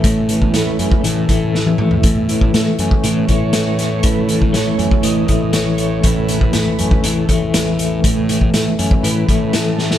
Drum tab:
HH |x-x-x-x-x-x-----|x-x-x-x-x-x-x-x-|x-x-x-x-x-x-x-x-|x-x-x-x-x-x-x-x-|
SD |----o-------o---|----o-------o-o-|----o-------o---|----o-------o---|
T1 |-------------o--|----------------|----------------|----------------|
T2 |--------------o-|----------------|----------------|----------------|
FT |---------------o|----------------|----------------|----------------|
BD |o--o---o--o-----|o--o---o--o-----|o--o---o--o-----|o--o---o--o-----|

HH |x-x-x-x-x-x-x---|
SD |----o-------o-oo|
T1 |----------------|
T2 |----------------|
FT |----------------|
BD |o--o---o--o-----|